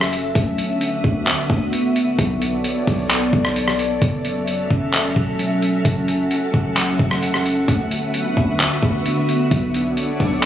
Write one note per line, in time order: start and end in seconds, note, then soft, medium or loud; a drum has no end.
0.00 0.33 F#1 loud
0.00 0.32 F#3 medium
0.00 0.32 C#4 medium
0.00 0.32 A4 medium
0.00 2.15 E5 medium
0.00 cross-stick loud
0.13 closed hi-hat medium
0.35 1.01 D2 loud
0.35 2.17 D3 medium
0.35 3.98 B3 medium
0.35 2.17 F#4 medium
0.35 kick loud
0.35 closed hi-hat medium
0.58 closed hi-hat medium
0.81 closed hi-hat medium
1.04 1.26 D2 loud
1.04 kick medium
1.27 clap loud
1.27 closed hi-hat medium
1.50 2.16 D2 loud
1.50 kick loud
1.73 closed hi-hat medium
1.96 closed hi-hat medium
2.19 2.63 B1 loud
2.19 7.64 A4 medium
2.19 4.00 C#5 medium
2.19 4.00 D5 medium
2.19 kick loud
2.19 closed hi-hat medium
2.42 closed hi-hat medium
2.64 closed hi-hat medium
2.87 3.31 B1 loud
2.87 kick loud
2.87 open hi-hat medium
3.10 clap loud
3.10 closed hi-hat medium
3.33 3.99 B1 loud
3.33 kick loud
3.45 cross-stick medium
3.56 closed hi-hat medium
3.68 cross-stick medium
3.79 closed hi-hat medium
4.02 4.68 F#1 loud
4.02 7.64 F#3 medium
4.02 7.65 A3 medium
4.02 7.65 C#4 medium
4.02 9.47 F#4 medium
4.02 7.64 E5 loud
4.02 5.83 E5 medium
4.02 kick loud
4.02 closed hi-hat medium
4.25 closed hi-hat medium
4.47 closed hi-hat medium
4.70 5.14 F#1 loud
4.70 kick medium
4.93 clap loud
4.93 closed hi-hat medium
5.16 5.82 E1 loud
5.16 kick loud
5.39 closed hi-hat medium
5.62 closed hi-hat medium
5.85 6.29 F#1 loud
5.85 7.66 F#5 medium
5.85 kick loud
5.85 closed hi-hat medium
6.08 closed hi-hat medium
6.31 closed hi-hat medium
6.54 6.98 F#1 loud
6.54 kick medium
6.77 clap loud
6.77 closed hi-hat medium
6.99 7.65 F#1 loud
6.99 kick loud
7.11 cross-stick loud
7.23 closed hi-hat medium
7.34 cross-stick medium
7.46 closed hi-hat medium
7.68 8.34 D2 loud
7.68 9.50 D3 medium
7.68 9.50 B3 medium
7.68 9.50 F#4 medium
7.68 9.50 E5 medium
7.68 kick loud
7.68 closed hi-hat medium
7.91 closed hi-hat medium
8.14 closed hi-hat medium
8.37 8.59 D2 loud
8.37 kick medium
8.60 clap loud
8.60 closed hi-hat medium
8.83 9.49 D2 loud
8.83 kick loud
9.06 closed hi-hat medium
9.29 closed hi-hat medium
9.51 9.95 B1 loud
9.51 10.46 A3 medium
9.51 10.46 B3 medium
9.51 10.46 D4 medium
9.51 10.46 A4 medium
9.51 10.46 C#5 medium
9.51 kick loud
9.51 closed hi-hat medium
9.74 closed hi-hat medium
9.97 closed hi-hat medium
10.20 10.46 B1 loud
10.20 kick medium
10.20 open hi-hat medium